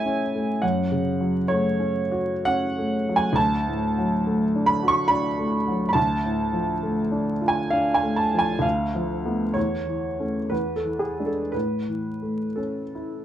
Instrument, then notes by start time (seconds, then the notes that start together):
upright piano
Already playing: A2 E3 A3 C#4 E4 A4 E5 G#5
0.05 C#4
0.35 A3
0.62 F#2 F#5
0.92 C#3
1.21 F#3
1.48 A3 C#5
1.80 C#4
2.12 F#4
2.45 C#4 F#5
2.78 A3
3.09 F#3
3.16 G#5
3.33 D2 A5
3.68 A2
3.98 F#3
4.27 A3
4.55 D4
4.66 B5
4.83 F#4
4.88 C#6
5.08 D4 B5
5.39 A3
5.68 F#3
5.89 B5
5.93 D2 A5
6.25 A2
6.53 F3
6.83 A3
7.12 D4
7.41 F4
7.48 G#5
7.70 D4 F5
7.94 G#5
8.03 A3
8.16 A5
8.34 F3
8.39 G#5
8.59 D2 F5
8.95 F3
9.25 A3 B3
9.54 E2 C#5
9.87 E3
10.20 A3 C#4
10.50 E2 B4
10.76 A4
10.85 E3
10.99 G#4
11.19 G#3 D4
11.26 A4
11.52 A2 B4
11.88 E3
12.22 A3
12.56 C#4 A4
12.95 E4